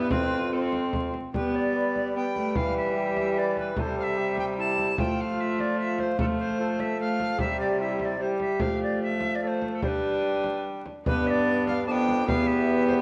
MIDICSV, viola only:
0, 0, Header, 1, 2, 480
1, 0, Start_track
1, 0, Tempo, 405405
1, 127, Time_signature, 3, 2, 24, 8
1, 15411, End_track
2, 0, Start_track
2, 0, Title_t, "Viola"
2, 0, Program_c, 0, 41
2, 0, Note_on_c, 0, 59, 95
2, 123, Note_on_c, 0, 60, 78
2, 141, Note_off_c, 0, 59, 0
2, 606, Note_off_c, 0, 60, 0
2, 613, Note_on_c, 0, 60, 72
2, 1334, Note_off_c, 0, 60, 0
2, 1592, Note_on_c, 0, 59, 72
2, 2503, Note_off_c, 0, 59, 0
2, 2550, Note_on_c, 0, 59, 65
2, 2644, Note_off_c, 0, 59, 0
2, 2791, Note_on_c, 0, 57, 63
2, 3025, Note_on_c, 0, 55, 77
2, 3043, Note_off_c, 0, 57, 0
2, 4458, Note_off_c, 0, 55, 0
2, 4465, Note_on_c, 0, 55, 78
2, 5867, Note_off_c, 0, 55, 0
2, 5903, Note_on_c, 0, 57, 80
2, 7301, Note_off_c, 0, 57, 0
2, 7329, Note_on_c, 0, 57, 78
2, 8261, Note_off_c, 0, 57, 0
2, 8281, Note_on_c, 0, 57, 74
2, 8747, Note_off_c, 0, 57, 0
2, 8757, Note_on_c, 0, 55, 76
2, 9691, Note_off_c, 0, 55, 0
2, 9701, Note_on_c, 0, 55, 70
2, 10180, Note_on_c, 0, 57, 68
2, 10197, Note_off_c, 0, 55, 0
2, 11138, Note_off_c, 0, 57, 0
2, 11145, Note_on_c, 0, 57, 64
2, 11638, Note_on_c, 0, 62, 73
2, 11655, Note_off_c, 0, 57, 0
2, 12857, Note_off_c, 0, 62, 0
2, 13094, Note_on_c, 0, 59, 89
2, 14009, Note_off_c, 0, 59, 0
2, 14049, Note_on_c, 0, 59, 82
2, 14520, Note_off_c, 0, 59, 0
2, 14528, Note_on_c, 0, 59, 98
2, 15411, Note_off_c, 0, 59, 0
2, 15411, End_track
0, 0, End_of_file